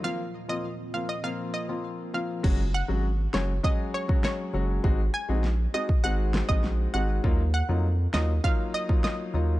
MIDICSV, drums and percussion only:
0, 0, Header, 1, 2, 480
1, 0, Start_track
1, 0, Tempo, 600000
1, 33, Time_signature, 4, 2, 24, 8
1, 7679, End_track
2, 0, Start_track
2, 0, Title_t, "Drums"
2, 1952, Note_on_c, 9, 36, 97
2, 1952, Note_on_c, 9, 49, 88
2, 2032, Note_off_c, 9, 36, 0
2, 2032, Note_off_c, 9, 49, 0
2, 2670, Note_on_c, 9, 38, 115
2, 2680, Note_on_c, 9, 37, 97
2, 2750, Note_off_c, 9, 38, 0
2, 2760, Note_off_c, 9, 37, 0
2, 2912, Note_on_c, 9, 36, 95
2, 2992, Note_off_c, 9, 36, 0
2, 3273, Note_on_c, 9, 36, 98
2, 3353, Note_off_c, 9, 36, 0
2, 3392, Note_on_c, 9, 38, 104
2, 3401, Note_on_c, 9, 37, 84
2, 3472, Note_off_c, 9, 38, 0
2, 3481, Note_off_c, 9, 37, 0
2, 3872, Note_on_c, 9, 36, 102
2, 3952, Note_off_c, 9, 36, 0
2, 4351, Note_on_c, 9, 38, 69
2, 4431, Note_off_c, 9, 38, 0
2, 4712, Note_on_c, 9, 36, 94
2, 4792, Note_off_c, 9, 36, 0
2, 5072, Note_on_c, 9, 38, 112
2, 5082, Note_on_c, 9, 37, 90
2, 5152, Note_off_c, 9, 38, 0
2, 5162, Note_off_c, 9, 37, 0
2, 5193, Note_on_c, 9, 36, 102
2, 5273, Note_off_c, 9, 36, 0
2, 5310, Note_on_c, 9, 38, 63
2, 5390, Note_off_c, 9, 38, 0
2, 5792, Note_on_c, 9, 36, 98
2, 5872, Note_off_c, 9, 36, 0
2, 6509, Note_on_c, 9, 38, 113
2, 6519, Note_on_c, 9, 37, 95
2, 6589, Note_off_c, 9, 38, 0
2, 6599, Note_off_c, 9, 37, 0
2, 6752, Note_on_c, 9, 36, 95
2, 6832, Note_off_c, 9, 36, 0
2, 7113, Note_on_c, 9, 36, 101
2, 7193, Note_off_c, 9, 36, 0
2, 7231, Note_on_c, 9, 38, 108
2, 7241, Note_on_c, 9, 37, 87
2, 7311, Note_off_c, 9, 38, 0
2, 7321, Note_off_c, 9, 37, 0
2, 7679, End_track
0, 0, End_of_file